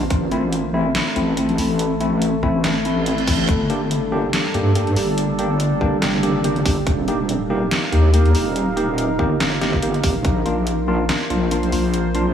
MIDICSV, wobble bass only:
0, 0, Header, 1, 2, 480
1, 0, Start_track
1, 0, Key_signature, -2, "minor"
1, 0, Tempo, 422535
1, 122, Time_signature, 4, 2, 24, 8
1, 14014, End_track
2, 0, Start_track
2, 0, Title_t, "Wobble bass"
2, 0, Program_c, 0, 39
2, 119, Note_on_c, 0, 33, 99
2, 1063, Note_off_c, 0, 33, 0
2, 1320, Note_on_c, 0, 33, 94
2, 1784, Note_off_c, 0, 33, 0
2, 1799, Note_on_c, 0, 33, 94
2, 2743, Note_off_c, 0, 33, 0
2, 2759, Note_on_c, 0, 33, 95
2, 3943, Note_off_c, 0, 33, 0
2, 3959, Note_on_c, 0, 31, 99
2, 4903, Note_off_c, 0, 31, 0
2, 5160, Note_on_c, 0, 43, 96
2, 5624, Note_off_c, 0, 43, 0
2, 5641, Note_on_c, 0, 31, 95
2, 6584, Note_off_c, 0, 31, 0
2, 6601, Note_on_c, 0, 31, 91
2, 7544, Note_off_c, 0, 31, 0
2, 7560, Note_on_c, 0, 31, 96
2, 7784, Note_off_c, 0, 31, 0
2, 7800, Note_on_c, 0, 27, 97
2, 8744, Note_off_c, 0, 27, 0
2, 9000, Note_on_c, 0, 39, 102
2, 9464, Note_off_c, 0, 39, 0
2, 9480, Note_on_c, 0, 27, 93
2, 10424, Note_off_c, 0, 27, 0
2, 10441, Note_on_c, 0, 31, 95
2, 11384, Note_off_c, 0, 31, 0
2, 11400, Note_on_c, 0, 27, 96
2, 11624, Note_off_c, 0, 27, 0
2, 11640, Note_on_c, 0, 34, 100
2, 12584, Note_off_c, 0, 34, 0
2, 12839, Note_on_c, 0, 34, 98
2, 13303, Note_off_c, 0, 34, 0
2, 13319, Note_on_c, 0, 34, 99
2, 14014, Note_off_c, 0, 34, 0
2, 14014, End_track
0, 0, End_of_file